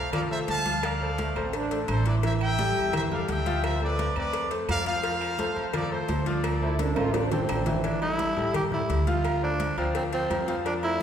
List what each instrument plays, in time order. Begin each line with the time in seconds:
Already playing: upright bass C2, trumpet section D5 F5
0.13 grand piano F3 F4 F5, trumpet section A4 D5, cowbell, high conga, low conga, low agogo, claves
0.30 grand piano A3 A4 C5, trumpet section C5 E5, high conga
0.48 upright bass D2, trumpet section F5 A5, cowbell, high conga, low agogo
0.66 grand piano F3 F4 F5, cowbell, high conga
0.83 trumpet section D5 F5, cowbell, high conga, low agogo, claves
1.01 grand piano A3 A4 C5, high conga
1.18 trombone section A3, cowbell, high conga, low agogo
1.36 upright bass A1, grand piano A3 A4 C5, high conga, low agogo, claves
1.46 trombone section C4
1.53 trombone section D4, cowbell, high conga
1.71 grand piano A3 A4 C5, cowbell, high conga
1.88 upright bass A1, trumpet section A4 C5, cowbell, high conga, low agogo, claves
2.06 grand piano E3 E4 E5, trumpet section B4 D5, cowbell, high conga
2.23 grand piano E3 E4 E5, trumpet section C5 E5, cowbell, high conga, low agogo
2.41 trumpet section E5 G5, high conga, low agogo, claves
2.59 grand piano G3 G4 A4, cowbell, high conga
2.76 upright bass E2, high conga, low agogo
2.93 grand piano E3 E4 E5, trumpet section C5 E5, cowbell, high conga, low conga, low agogo, claves
3.11 grand piano G3 G4 A4, trumpet section D5 F5, high conga, low conga
3.29 upright bass D2, trumpet section E5 G5, cowbell, high conga, low agogo
3.46 grand piano F3 F4 F5, cowbell, high conga
3.64 trumpet section C5 E5, cowbell, high conga, low agogo, claves
3.81 grand piano A3 C4 A4, trumpet section B4 D5, high conga
3.99 cowbell, high conga, low agogo
4.16 upright bass F2, grand piano A3 C4 A4, trumpet section B4 D5, high conga, low agogo, claves
4.33 cowbell, high conga
4.51 grand piano A3 A4 C5, cowbell, high conga
4.68 upright bass F2, trumpet section D5 F5, cowbell, high conga, low timbale, low agogo, claves
4.86 grand piano F3 F4 F5, trumpet section C5 F5, cowbell, high conga
5.03 grand piano F3 F4 F5, cowbell, high conga, low agogo
5.21 high conga, low agogo, claves
5.39 grand piano A3 A4 C5, cowbell, high conga
5.56 upright bass F2, high conga, low agogo
5.74 grand piano F3 F4 F5, trumpet section A4 D5, cowbell, high conga, low conga, low agogo, claves
5.91 grand piano A3 A4 C5, trumpet section A4 C5, high conga
6.08 upright bass D2, cowbell, high conga, low timbale, low agogo
6.26 grand piano F3 F4 F5, trumpet section A4 D5, cowbell, high conga
6.44 cowbell, high conga, low agogo, claves
6.61 grand piano A3 A4 C5, trombone section E4, high conga
6.79 trombone section D4, cowbell, high conga, high timbale, low agogo
6.96 upright bass A1, grand piano A3 A4 C5, trombone section F4, high conga, high timbale, low agogo, claves
7.14 trombone section D4, cowbell, low timbale
7.32 grand piano A3 A4 C5, tenor saxophone C4, trombone section D4, cowbell, low conga, low timbale
7.49 upright bass A1, trombone section D4, cowbell, low timbale, low agogo, claves
7.66 grand piano E3 E4 E5, cowbell, low conga, low timbale
7.84 grand piano E3 E4 E5, tenor saxophone D4, cowbell, high conga, low agogo
8.01 grand piano G3 G4 A4, tenor saxophone E4, high conga, low agogo
8.19 cowbell, high conga
8.37 upright bass A2, grand piano G3 G4 A4, high conga, low agogo
8.54 tenor saxophone G4, cowbell, high conga, low conga, low agogo
8.72 grand piano G3 G4 A4, tenor saxophone E4, high conga, low conga
8.89 upright bass D2, cowbell, high conga, low agogo
9.07 grand piano F3 F4 F5, tenor saxophone F4, cowbell, high conga
9.25 cowbell, high conga, low agogo
9.42 grand piano A3 A4 C5, tenor saxophone D4, high conga
9.60 cowbell, high conga, low agogo
9.77 upright bass D2, grand piano F3 F4 F5, tenor saxophone C4, high conga, low agogo
9.95 tenor saxophone C4, cowbell, high conga
10.12 grand piano F3 F4 F5, tenor saxophone C4, cowbell, high conga
10.30 upright bass F2, cowbell, high conga, low timbale, low agogo
10.48 grand piano F3 F4 F5, tenor saxophone C4, cowbell, high conga
10.65 grand piano F3 F4 F5, tenor saxophone D4, cowbell, high conga, low agogo
10.83 grand piano A3 A4 C5, tenor saxophone E4, high conga, low agogo